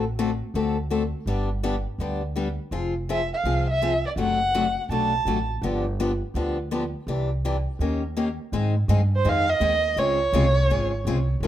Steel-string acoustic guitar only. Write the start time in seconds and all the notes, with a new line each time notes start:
0.19 D3 A3 C4 F#4 A4
0.55 D3 A3 C4 F#4 A4
0.90 D3 A3 C4 F#4 A4
1.27 D3 G3 B3 D4 G4
1.63 D3 G3 B3 D4 G4
2.00 D3 G3 B3 D4 G4
2.36 D3 G3 B3 D4 G4
2.72 F3 C4 F4 G#4
3.09 F3 C4 F4 G#4
3.45 F3 C4 F4 G#4
3.82 F3 C4 F4 G#4
4.17 C3 F#3 A3 D4 F#4
4.54 C3 F#3 A3 D4 F#4
4.91 C3 F#3 A3 D4 F#4
5.27 C3 F#3 A3 D4 F#4
5.63 D3 F3 B3 D4 G4
6.00 D3 F3 B3 D4 G4
6.35 D3 F3 B3 D4 G4
6.71 D3 F3 B3 D4 G4
7.08 C3 E3 D4 G4
7.45 C3 E3 D4 G4
7.81 D#3 A#3 C#4 G4 A#4
8.17 D#3 A#3 C#4 G4 A#4
8.53 D#3 G#3 C4 D#4 G#4
8.89 D#3 G#3 C4 D#4 G#4
9.25 D#3 G#3 C4 D#4 G#4
9.61 D#3 G#3 C4 D#4 G#4
9.97 C#3 G#3 C4 F4 G#4
10.34 C#3 G#3 C4 F4 G#4
10.70 C#3 G#3 C4 F4 G#4
11.07 C#3 G#3 C4 F4 G#4
11.43 C#3 F3 G#3 C#4 F4 A#4